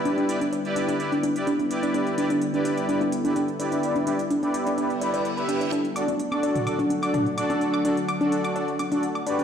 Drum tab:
HH |xxxxxxxxxxxxxxxx|xxxxxxxxxxxxxxxx|xxxxxxxxxxxxxxxx|xxxxxxxxxxxxxxxx|
T2 |----------------|----------------|----------------|-------o----o---|
CG |----------------|----------------|----------------|-----o----o----o|

HH |xxxxxxxxxxxxxxxx|
T2 |----------------|
CG |-----o----o----o|